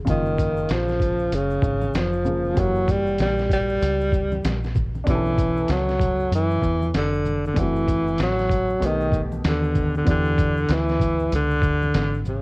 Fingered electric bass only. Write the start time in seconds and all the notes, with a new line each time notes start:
0.07 F#1
0.70 A#1
1.32 F#1
1.62 G#1
1.94 F1
2.57 F#1
3.20 A#1
3.82 C#2
4.44 A#1
5.07 B1
5.69 C#2
6.31 F#2
6.62 E2
6.94 F1
7.57 F#1
8.19 A1
8.82 B1
9.44 D#2
10.07 E2
10.69 D2
11.32 C#2
11.62 D2
11.95 G#1